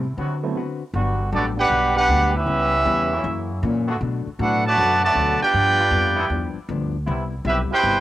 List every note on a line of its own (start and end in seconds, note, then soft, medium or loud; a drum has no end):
0.00 0.17 C3 loud
0.17 0.35 C3 medium
0.17 0.44 D3 soft
0.17 0.55 D3 medium
0.17 0.35 F#3 medium
0.17 0.35 B3 medium
0.17 0.44 C4 medium
0.17 0.35 F#4 loud
0.17 0.45 F#4 medium
0.17 0.45 B4 medium
0.43 0.55 F#3 medium
0.43 0.55 A3 medium
0.43 0.55 B3 medium
0.43 0.55 C4 medium
0.43 0.55 E4 medium
0.55 0.82 D3 medium
0.55 0.82 C4 medium
0.55 0.83 F#4 medium
0.55 0.83 B4 medium
0.94 1.31 G1 loud
0.94 1.21 G2 medium
0.94 1.30 D3 medium
0.94 1.21 F#3 medium
0.94 1.30 G3 medium
0.94 1.31 B3 medium
0.94 1.22 B3 medium
0.94 1.22 D4 medium
0.94 1.31 F#4 loud
1.32 1.69 A1 medium
1.32 1.59 G2 medium
1.32 1.49 D3 medium
1.32 1.43 F#3 medium
1.32 1.59 F#3 medium
1.32 1.49 G3 medium
1.32 1.49 B3 medium
1.32 1.43 B3 medium
1.32 1.60 B3 medium
1.32 1.46 B3 medium
1.32 1.44 D4 medium
1.32 1.60 D4 medium
1.32 1.45 F#4 medium
1.32 1.46 G4 medium
1.32 1.49 A4 medium
1.32 1.46 D5 medium
1.57 1.93 B3 medium
1.57 1.93 D4 loud
1.57 1.94 D4 medium
1.57 1.93 G4 medium
1.57 1.94 G4 medium
1.57 1.94 B4 medium
1.57 1.94 F#5 loud
1.70 2.07 B1 medium
1.70 1.97 G2 medium
1.70 1.97 F#3 medium
1.70 1.98 B3 medium
1.70 1.98 D4 medium
1.96 2.31 B3 loud
1.96 2.32 D4 medium
1.96 2.32 G4 loud
1.96 2.32 G4 medium
1.96 2.33 B4 medium
1.96 2.32 F#5 loud
2.08 2.46 D2 loud
2.08 2.36 G2 medium
2.08 2.36 F#3 medium
2.08 2.36 B3 medium
2.08 2.36 D4 medium
2.34 3.20 G3 medium
2.34 3.20 B3 medium
2.34 3.47 C#4 medium
2.34 3.45 E4 medium
2.34 3.21 G4 medium
2.34 3.21 B4 medium
2.34 3.47 E5 loud
2.46 2.84 C#2 medium
2.46 2.74 C#3 medium
2.46 2.74 G3 medium
2.46 2.75 B3 medium
2.46 2.75 E4 medium
2.85 3.23 E2 loud
2.85 3.12 C#3 medium
2.85 3.12 G3 medium
2.85 3.12 B3 medium
2.85 3.13 E4 medium
3.11 3.60 C#3 loud
3.11 3.60 F#3 medium
3.11 3.59 A#3 medium
3.11 3.59 E4 loud
3.23 3.50 F#2 medium
3.23 3.61 F#2 loud
3.23 3.51 E3 medium
3.23 3.51 A#3 medium
3.23 3.52 C#4 medium
3.62 3.89 F#2 medium
3.62 4.00 A#2 loud
3.62 3.89 E3 medium
3.62 3.89 A#3 medium
3.62 3.90 C#4 medium
3.86 3.95 D3 loud
3.86 3.96 A3 medium
3.86 3.96 B3 loud
3.86 3.96 F#4 loud
4.01 4.27 B2 medium
4.01 4.24 B2 medium
4.01 4.27 F#3 medium
4.01 4.28 A3 medium
4.01 4.29 D4 medium
4.27 muted upright bass stroke soft
4.39 4.76 A2 loud
4.39 4.65 B2 medium
4.39 4.66 F#3 medium
4.39 4.63 A3 medium
4.39 4.66 A3 medium
4.39 4.63 D4 medium
4.39 4.67 D4 medium
4.39 4.64 D4 medium
4.39 4.63 F#4 medium
4.39 4.64 A4 medium
4.39 4.64 B4 medium
4.39 4.64 F#5 loud
4.66 5.00 D3 medium
4.66 5.00 F#3 medium
4.66 5.01 A3 loud
4.66 5.01 F#4 loud
4.66 5.01 B4 loud
4.66 5.01 D5 loud
4.66 5.01 A5 loud
4.77 5.14 F#2 medium
4.77 5.04 B2 medium
4.77 5.36 D3 loud
4.77 5.04 F#3 medium
4.77 5.35 A3 medium
4.77 5.05 A3 medium
4.77 5.36 B3 medium
4.77 5.05 D4 medium
4.77 5.35 F#4 loud
5.03 5.39 D3 loud
5.03 5.39 F#3 loud
5.03 5.39 A3 loud
5.03 5.39 F#4 medium
5.03 5.39 B4 medium
5.03 5.39 D5 medium
5.03 5.39 A5 loud
5.15 5.39 D2 loud
5.15 5.42 B2 medium
5.15 5.43 F#3 medium
5.15 5.43 A3 medium
5.15 5.43 D4 medium
5.41 6.52 B3 medium
5.41 6.52 D4 medium
5.41 6.52 F4 medium
5.41 6.52 G4 medium
5.41 6.53 B4 medium
5.41 6.53 D5 medium
5.41 6.53 G5 loud
5.41 muted upright bass stroke soft
5.54 5.90 G2 medium
5.54 5.81 G2 medium
5.54 5.81 F3 medium
5.54 5.82 B3 medium
5.54 5.82 D4 medium
5.78 6.14 D3 loud
5.78 6.15 G3 medium
5.78 6.15 B3 medium
5.78 6.15 F4 loud
5.91 6.28 F2 loud
5.91 6.19 G2 medium
5.91 6.19 F3 medium
5.91 6.19 B3 medium
5.91 6.20 D4 medium
6.16 6.25 D3 loud
6.16 6.25 G3 loud
6.16 6.25 B3 loud
6.16 6.25 E4 loud
6.30 6.53 E2 medium
6.30 6.57 G2 medium
6.30 6.57 F3 medium
6.30 6.58 B3 medium
6.30 6.58 D4 medium
6.55 muted upright bass stroke soft
6.69 7.06 D2 loud
6.69 6.95 G2 medium
6.69 6.96 F3 medium
6.69 6.96 B3 medium
6.69 6.96 D4 medium
7.06 7.44 C2 medium
7.06 7.33 C3 medium
7.06 7.24 C3 medium
7.06 7.23 G3 medium
7.06 7.34 G3 medium
7.06 7.23 B3 medium
7.06 7.34 B3 medium
7.06 7.24 E4 loud
7.06 7.34 E4 medium
7.45 7.68 B1 loud
7.45 7.71 C3 medium
7.45 7.72 G3 medium
7.45 7.57 G3 medium
7.45 7.72 B3 medium
7.45 7.57 B3 medium
7.45 7.58 C4 medium
7.45 7.72 E4 medium
7.45 7.58 E4 medium
7.45 7.59 G4 medium
7.45 7.59 B4 medium
7.45 7.58 E5 medium
7.71 8.00 B2 medium
7.71 8.00 E4 loud
7.71 8.00 G4 medium
7.71 8.00 B4 loud
7.71 8.00 C5 loud
7.71 8.00 G5 loud
7.71 muted upright bass stroke soft
7.83 8.00 G1 medium
7.83 8.00 C3 soft
7.83 8.00 G3 medium
7.83 8.00 B3 medium
7.83 8.00 E4 medium